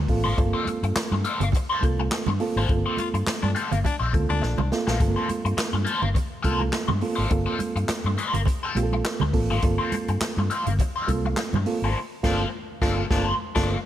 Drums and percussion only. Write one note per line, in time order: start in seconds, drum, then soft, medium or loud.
0.08 kick medium
0.08 open hi-hat medium
0.08 muted conga soft
0.37 kick loud
0.37 closed hi-hat medium
0.37 muted conga soft
0.65 closed hi-hat medium
0.65 high conga medium
0.83 closed hi-hat soft
0.95 snare loud
0.95 clap medium
0.95 closed hi-hat loud
0.95 muted conga soft
1.12 high conga medium
1.24 closed hi-hat medium
1.24 muted conga soft
1.40 closed hi-hat medium
1.40 low conga medium
1.52 kick loud
1.52 closed hi-hat medium
1.52 muted conga soft
1.52 low conga medium
1.81 kick loud
1.81 closed hi-hat medium
1.81 high conga medium
1.98 high conga medium
2.11 snare loud
2.11 clap medium
2.11 closed hi-hat medium
2.26 high conga medium
2.26 low conga medium
2.40 open hi-hat medium
2.40 muted conga soft
2.69 kick loud
2.69 closed hi-hat medium
2.69 muted conga soft
2.97 closed hi-hat medium
2.97 muted conga soft
2.97 high conga medium
3.15 closed hi-hat soft
3.27 snare loud
3.27 clap medium
3.27 closed hi-hat loud
3.27 muted conga soft
3.43 high conga medium
3.56 closed hi-hat medium
3.72 closed hi-hat medium
3.72 low conga medium
3.85 kick medium
3.85 closed hi-hat medium
3.85 high conga medium
3.85 low conga medium
4.13 kick loud
4.13 closed hi-hat medium
4.13 muted conga soft
4.13 high conga medium
4.30 high conga medium
4.43 snare medium
4.58 high conga medium
4.58 low conga loud
4.72 snare medium
4.72 muted conga soft
4.88 snare loud
5.00 kick loud
5.00 closed hi-hat medium
5.00 muted conga soft
5.29 closed hi-hat medium
5.29 muted conga soft
5.29 high conga medium
5.46 closed hi-hat soft
5.58 snare loud
5.58 clap medium
5.58 closed hi-hat loud
5.58 muted conga soft
5.73 high conga medium
5.87 closed hi-hat medium
6.03 low conga medium
6.15 kick medium
6.15 closed hi-hat medium
6.15 muted conga soft
6.15 low conga medium
6.44 kick loud
6.44 closed hi-hat medium
6.44 high conga medium
6.60 high conga medium
6.73 snare loud
6.73 clap medium
6.73 closed hi-hat medium
6.88 high conga loud
6.88 low conga loud
7.01 open hi-hat medium
7.31 kick loud
7.31 closed hi-hat medium
7.31 muted conga soft
7.59 closed hi-hat medium
7.59 muted conga soft
7.59 high conga medium
7.77 closed hi-hat soft
7.89 snare loud
7.89 clap medium
7.89 closed hi-hat loud
8.05 high conga medium
8.17 closed hi-hat medium
8.17 muted conga soft
8.33 closed hi-hat medium
8.33 low conga medium
8.45 kick medium
8.45 closed hi-hat medium
8.45 muted conga soft
8.45 low conga medium
8.75 closed hi-hat medium
8.75 muted conga soft
8.75 high conga medium
8.92 high conga medium
9.04 snare loud
9.04 clap loud
9.04 closed hi-hat medium
9.04 muted conga soft
9.20 high conga medium
9.20 low conga loud
9.33 kick medium
9.33 open hi-hat medium
9.33 muted conga soft
9.62 kick loud
9.62 closed hi-hat medium
9.62 muted conga soft
9.92 closed hi-hat medium
9.92 muted conga soft
9.92 high conga medium
10.08 closed hi-hat soft
10.21 snare loud
10.21 clap loud
10.21 closed hi-hat loud
10.21 muted conga soft
10.38 high conga medium
10.50 closed hi-hat medium
10.50 muted conga soft
10.67 closed hi-hat medium
10.67 low conga medium
10.79 kick loud
10.79 closed hi-hat medium
10.79 muted conga soft
10.79 low conga medium
11.08 kick loud
11.08 closed hi-hat medium
11.08 muted conga soft
11.08 high conga medium
11.25 high conga medium
11.37 snare loud
11.37 clap medium
11.37 closed hi-hat medium
11.37 muted conga soft
11.54 high conga medium
11.54 low conga medium
11.66 open hi-hat medium
11.66 muted conga soft
12.24 kick loud
12.24 snare loud
12.24 crash medium
12.82 kick loud
12.82 snare loud
13.11 kick loud
13.11 snare loud
13.56 kick loud
13.56 snare loud